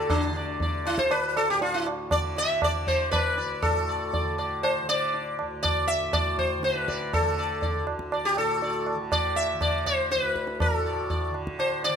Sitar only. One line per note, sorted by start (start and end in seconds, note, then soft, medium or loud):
0.00 0.13 A4 loud
0.10 0.86 D4 medium
0.36 0.59 D5 soft
0.62 0.85 D5 soft
0.87 0.99 E4 medium
0.99 1.12 C5 medium
1.11 1.36 B4 medium
1.37 1.50 A4 loud
1.50 1.61 G4 medium
1.62 1.75 F4 medium
1.74 1.86 E4 medium
2.11 2.36 D5 loud
2.37 2.60 D5 soft
2.37 2.63 E5 loud
2.63 2.85 D5 medium
2.87 3.11 C5 medium
2.87 3.10 D5 soft
3.11 3.64 B4 medium
3.11 3.35 D5 soft
3.37 3.61 D5 soft
3.62 4.34 A4 medium
3.89 4.12 D5 soft
4.14 4.37 D5 soft
4.38 4.61 D5 soft
4.63 4.88 C5 medium
4.89 5.35 D5 loud
5.63 5.89 D5 medium
5.88 6.13 E5 medium
6.13 6.38 D5 medium
6.39 6.64 C5 medium
6.64 6.77 C5 medium
6.77 7.15 B4 medium
6.88 7.11 D5 soft
7.14 7.84 A4 medium
7.39 7.61 D5 soft
7.63 7.86 D5 soft
8.13 8.36 D5 soft
8.25 8.36 G4 medium
8.38 8.95 A4 medium
8.63 8.86 D5 soft
9.12 9.37 D5 loud
9.36 9.62 E5 medium
9.62 9.86 D5 medium
9.86 10.09 C5 medium
10.11 10.22 C5 medium
10.22 10.57 B4 medium
10.62 11.31 A4 medium
10.86 11.08 D5 soft
11.10 11.32 D5 soft
11.60 11.84 C5 medium
11.84 11.96 D5 loud